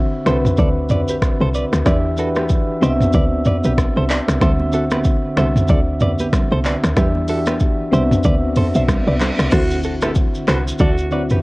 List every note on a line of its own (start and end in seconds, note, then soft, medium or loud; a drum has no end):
0.00 0.25 D3 medium
0.00 0.26 C4 medium
0.00 0.27 F#4 medium
0.00 1.87 E5 loud
0.25 0.51 C2 loud
0.25 1.44 D3 medium
0.25 1.45 C4 medium
0.25 1.45 F#4 medium
0.25 0.37 A4 medium
0.25 1.46 B4 loud
0.25 0.37 C5 medium
0.25 finger snap medium
0.25 cross-stick medium
0.25 shaker medium
0.45 mid tom loud
0.45 shaker medium
0.57 1.10 D2 loud
0.57 0.69 A4 medium
0.57 0.68 D5 medium
0.57 kick loud
0.57 shaker medium
0.90 1.01 B4 medium
0.90 1.00 D5 medium
0.90 mid tom medium
0.90 shaker medium
1.08 1.34 B1 medium
1.08 1.17 G4 medium
1.08 1.16 B4 medium
1.08 shaker medium
1.22 finger snap medium
1.22 kick medium
1.22 cross-stick medium
1.22 shaker medium
1.41 1.65 C2 medium
1.41 1.49 A4 medium
1.41 1.48 C5 medium
1.55 1.65 B4 medium
1.55 1.64 D5 medium
1.55 shaker medium
1.73 1.83 D2 medium
1.73 finger snap medium
1.73 cross-stick medium
1.73 shaker medium
1.85 2.65 E2 loud
1.85 2.15 E3 medium
1.85 2.16 D4 medium
1.85 2.16 G4 medium
1.85 1.97 B4 medium
1.85 1.96 D5 medium
1.85 2.16 E5 loud
1.85 finger snap medium
1.85 kick loud
1.85 cross-stick medium
1.85 shaker medium
2.17 2.77 E3 medium
2.17 2.77 D4 medium
2.17 2.26 F#4 medium
2.17 2.29 F#4 medium
2.17 2.28 A4 medium
2.17 2.78 B4 medium
2.17 shaker medium
2.25 2.81 G4 medium
2.35 2.45 G4 medium
2.35 2.44 B4 medium
2.35 finger snap medium
2.35 cross-stick loud
2.35 shaker medium
2.49 kick medium
2.49 shaker medium
2.81 3.07 C2 loud
2.81 4.00 B3 medium
2.81 4.00 C4 medium
2.81 4.00 D4 medium
2.81 4.01 F#4 medium
2.81 2.93 G4 medium
2.81 2.92 C5 medium
2.81 2.90 D#5 medium
2.81 shaker medium
2.90 4.04 E5 loud
3.00 mid tom loud
3.00 shaker medium
3.13 3.53 D2 loud
3.13 3.24 B4 medium
3.13 3.24 D5 medium
3.13 kick loud
3.13 shaker medium
3.45 3.56 B4 medium
3.45 3.56 D5 medium
3.45 mid tom loud
3.45 shaker soft
3.64 3.89 B1 medium
3.64 3.72 G4 medium
3.64 3.72 B4 medium
3.64 shaker medium
3.78 finger snap medium
3.78 kick medium
3.78 cross-stick loud
3.78 shaker medium
3.96 4.21 C2 medium
3.96 4.04 A4 medium
3.96 4.04 C5 medium
4.10 4.20 B4 medium
4.10 4.20 D5 medium
4.10 clap loud
4.10 shaker medium
4.28 4.38 C2 medium
4.28 finger snap medium
4.28 cross-stick medium
4.28 shaker medium
4.40 5.20 D2 loud
4.40 4.70 D3 medium
4.40 4.71 C4 medium
4.40 4.71 F#4 medium
4.40 4.52 A4 medium
4.40 4.51 C5 medium
4.40 4.72 E5 loud
4.40 finger snap medium
4.40 kick loud
4.40 cross-stick medium
4.40 low conga medium
4.40 shaker medium
4.60 high conga medium
4.72 5.32 D3 medium
4.72 5.32 C4 medium
4.72 5.33 F#4 medium
4.72 4.84 F#4 medium
4.72 4.83 A4 medium
4.72 5.33 E5 medium
4.72 shaker medium
4.91 5.00 G4 medium
4.91 4.99 B4 medium
4.91 finger snap medium
4.91 cross-stick loud
4.91 high conga medium
4.91 shaker medium
5.04 kick medium
5.04 shaker medium
5.36 5.62 C2 medium
5.36 6.55 D3 medium
5.36 6.55 C4 medium
5.36 6.56 F#4 medium
5.36 5.48 A4 medium
5.36 5.47 C5 medium
5.36 6.56 E5 loud
5.36 finger snap medium
5.36 cross-stick loud
5.36 high conga medium
5.36 low conga medium
5.36 shaker soft
5.56 mid tom loud
5.56 high conga medium
5.56 shaker medium
5.68 6.21 D2 loud
5.68 5.80 A4 medium
5.68 5.79 D5 medium
5.68 kick loud
5.68 shaker medium
6.00 6.12 B4 medium
6.00 6.11 D5 medium
6.00 mid tom medium
6.00 high conga medium
6.00 shaker medium
6.19 6.44 B1 medium
6.19 6.28 G4 medium
6.19 6.27 B4 medium
6.19 high conga medium
6.19 shaker medium
6.33 finger snap medium
6.33 kick medium
6.33 cross-stick medium
6.33 low conga medium
6.33 shaker medium
6.52 6.76 C2 medium
6.52 6.59 A4 medium
6.52 6.59 C5 medium
6.52 high conga medium
6.65 6.76 B4 medium
6.65 6.75 D5 medium
6.65 clap loud
6.65 shaker medium
6.84 6.94 D2 loud
6.84 finger snap medium
6.84 cross-stick medium
6.84 shaker medium
6.96 7.75 E2 loud
6.96 7.26 E3 medium
6.96 7.26 D4 medium
6.96 7.27 G4 medium
6.96 7.07 G4 medium
6.96 7.07 B4 medium
6.96 7.27 E5 loud
6.96 finger snap medium
6.96 kick loud
6.96 cross-stick medium
6.96 low conga medium
6.96 shaker medium
7.15 high conga medium
7.27 7.87 E3 medium
7.27 7.88 D4 medium
7.27 7.37 F#4 medium
7.27 7.39 F#4 medium
7.27 7.39 A4 medium
7.27 7.89 E5 medium
7.27 open hi-hat medium
7.27 shaker medium
7.36 7.91 G4 medium
7.46 7.55 G4 medium
7.46 7.55 B4 medium
7.46 finger snap medium
7.46 cross-stick loud
7.46 high conga medium
7.46 shaker medium
7.60 kick medium
7.60 shaker medium
7.91 8.17 C2 loud
7.91 9.11 B3 medium
7.91 9.10 C4 medium
7.91 9.11 D4 medium
7.91 9.11 F#4 medium
7.91 8.03 G4 medium
7.91 8.03 C5 medium
7.91 9.12 E5 loud
7.91 high conga medium
7.91 low conga medium
7.91 shaker medium
8.11 mid tom loud
8.11 high conga medium
8.11 shaker medium
8.23 8.64 D2 loud
8.23 8.35 B4 medium
8.23 8.34 D5 medium
8.23 kick loud
8.23 reverse cymbal medium
8.23 shaker medium
8.56 8.67 A4 medium
8.56 8.66 C5 medium
8.56 mid tom medium
8.56 open hi-hat medium
8.56 high conga medium
8.56 shaker medium
8.74 9.00 B1 medium
8.74 8.83 C5 medium
8.74 8.82 E5 medium
8.74 high conga medium
8.74 shaker medium
8.88 finger snap medium
8.88 kick medium
8.88 cross-stick loud
8.88 low conga medium
8.88 shaker medium
9.07 9.32 C2 medium
9.07 9.15 B4 medium
9.07 9.14 D5 medium
9.07 high conga medium
9.20 9.31 A4 medium
9.20 9.30 C5 medium
9.20 clap loud
9.20 low conga medium
9.20 shaker medium
9.39 9.49 C2 medium
9.39 finger snap medium
9.39 cross-stick medium
9.39 shaker medium
9.51 10.31 D2 loud
9.51 10.70 D3 medium
9.51 10.70 C4 medium
9.51 10.71 E4 medium
9.51 9.80 F#4 loud
9.51 10.71 F#4 medium
9.51 9.63 A4 medium
9.51 9.62 C5 medium
9.51 finger snap medium
9.51 kick loud
9.51 cross-stick medium
9.51 crash loud
9.51 impact medium
9.51 shaker medium
9.71 shaker medium
9.83 9.95 F#4 medium
9.83 9.94 A4 medium
9.83 shaker medium
10.02 10.13 A3 medium
10.02 10.14 E4 medium
10.02 10.11 G4 medium
10.02 10.13 A4 medium
10.02 10.10 B4 medium
10.02 finger snap medium
10.02 cross-stick loud
10.02 shaker medium
10.15 kick medium
10.15 shaker medium
10.35 shaker medium
10.48 10.73 C2 medium
10.48 10.63 B3 medium
10.48 10.64 F#4 medium
10.48 10.58 A4 medium
10.48 10.63 B4 medium
10.48 10.58 C5 medium
10.48 finger snap medium
10.48 cross-stick loud
10.48 clap loud
10.48 shaker medium
10.68 shaker medium
10.79 11.32 D2 loud
10.79 10.95 A3 medium
10.79 11.28 F#4 medium
10.79 10.95 A4 loud
10.79 10.90 A4 medium
10.79 10.90 D5 medium
10.79 kick loud
10.79 shaker medium
10.98 shaker soft
11.11 11.42 D3 medium
11.11 11.23 F#3 medium
11.11 11.42 C4 medium
11.11 11.42 E4 medium
11.11 11.23 F#4 medium
11.11 11.42 F#4 medium
11.11 11.22 B4 medium
11.11 11.22 D5 medium
11.11 shaker medium
11.30 11.42 B1 medium
11.30 11.38 G4 medium
11.30 11.38 B4 medium
11.30 mid tom loud
11.30 shaker medium